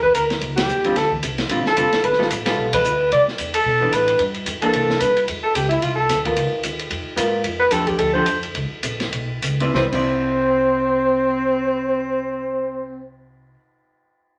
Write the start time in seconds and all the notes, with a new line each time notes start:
Already playing: E2
0.03 B4, kick
0.15 D2 A#4, hi-hat pedal, ride
0.30 snare, ride
0.41 C#2, kick, ride
0.56 G4, snare, ride
0.69 E2, hi-hat pedal
0.84 D3 G3 C4 F4, ride
0.96 D2 A4, kick, snare, ride
1.12 kick
1.23 C2, kick, hi-hat pedal, ride
1.38 snare, ride
1.49 A1 D3 G3 C4 F4, kick, ride
1.65 A4, muted upright bass stroke, snare
1.76 F1 D3 G3 C4 F4, kick, hi-hat pedal, ride
1.92 muted upright bass stroke, snare, ride
2.04 G1 B4, kick, ride
2.13 snare
2.19 G3 B3 F4 A4, snare
2.31 A1, kick, hi-hat pedal, ride
2.46 G3 B3 F4 A4, snare, ride
2.58 B1, kick
2.73 B4, kick, ride
2.84 D2, hi-hat pedal
3.12 C2 D5, kick, ride
3.28 snare
3.38 E2, kick, hi-hat pedal, ride
3.54 A4, ride
3.65 B2, kick
3.81 E3 B3 D4
3.92 A2 B4, kick, hi-hat pedal, ride
4.08 ride
4.19 G2, kick, ride
4.34 ride
4.46 F2, kick, hi-hat pedal, ride
4.62 E3 A#3 D4 A4, muted upright bass stroke, ride
4.73 C2, kick, ride
4.90 snare
5.00 G2 B4, kick, hi-hat pedal, ride
5.17 ride
5.28 F2, kick, ride
5.43 A4, muted upright bass stroke
5.55 C#2 G4, kick, hi-hat pedal, ride
5.69 E4, ride
5.81 C2 F4, kick, ride
5.95 A4
6.09 D2, kick, snare, hi-hat pedal, ride
6.25 B3 F4 A#4, kick, ride
6.36 C#2, ride
6.63 D#2, kick, hi-hat pedal, ride
6.79 ride
6.91 F2, kick, ride
7.07 muted upright bass stroke
7.16 G#2 B3 F4 A#4, kick, hi-hat pedal, ride
7.44 F2, kick, ride
7.60 B4
7.71 E2 F3 D4 G4 A4, kick, hi-hat pedal, ride
7.87 G4, kick, ride
7.98 D2 A4, kick, ride
8.13 F3 D4 G4 A4 C5
8.26 kick, hi-hat pedal, ride
8.43 ride
8.55 C#2, kick, ride
8.70 muted upright bass stroke
8.83 A#1, kick, hi-hat pedal, ride
9.00 snare, ride
9.12 B1, kick, ride
9.42 C#2, kick, hi-hat pedal, ride
9.60 C4 E4 B4 D5, ride
9.73 C2 C4 E4 B4 C5 D5, kick, snare
9.92 C2 C4 E4 C5 D5, kick, crash